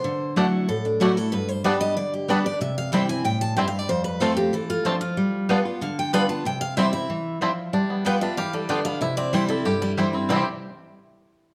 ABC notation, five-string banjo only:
X:1
M:4/4
L:1/8
Q:1/4=187
K:C
V:1 name="Five-string banjo"
z2 [A,D] z3 [A,D] z | z2 [G,B,D] z3 [G,B,D] z | z2 [G,CE] z3 [G,CE] z | z2 [A,CF] z3 [A,CF] z |
z2 [G,B,D] z3 [G,B,D] z | z2 [G,CE] z3 [G,CE] z | D B, G, D G G, D B, | E C G, E G G, E C |
[G,CEG] z6 z |]